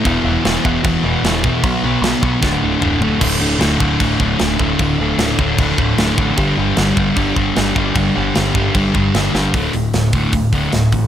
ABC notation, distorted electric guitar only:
X:1
M:4/4
L:1/8
Q:1/4=152
K:D
V:1 name="Distorted electric guitar" clef=bass
[E,,B,,E,] [E,,B,,E,] [E,,B,,E,] [E,,B,,E,] [E,,B,,E,] [E,,B,,E,] [E,,B,,E,] [E,,B,,E,] | [B,,F,B,] [B,,F,B,] [B,,F,B,] [B,,F,B,] [D,,A,,D,] [D,,A,,D,] [D,,A,,D,] [D,,A,,D,] | [K:Glyd] [D,,A,,D,] [D,,A,,D,] [D,,A,,D,] [D,,A,,D,] [D,,A,,D,] [D,,A,,D,] [D,,A,,D,] [D,,A,,D,] | [D,,A,,D,] [D,,A,,D,] [D,,A,,D,] [D,,A,,D,] [D,,A,,D,] [D,,A,,D,] [D,,A,,D,] [D,,A,,D,] |
[G,,D,G,] [G,,D,G,] [G,,D,G,] [G,,D,G,] [G,,D,G,] [G,,D,G,] [G,,D,G,] [G,,D,G,] | [G,,D,G,] [G,,D,G,] [G,,D,G,] [G,,D,G,] [G,,D,G,] [G,,D,G,] [G,,D,G,] [G,,D,G,] | [D,,A,,D,] [D,,A,,] [D,,A,,] [D,,A,,D,] [D,,A,,] [D,,A,,D,] [D,,A,,] [D,,A,,] |]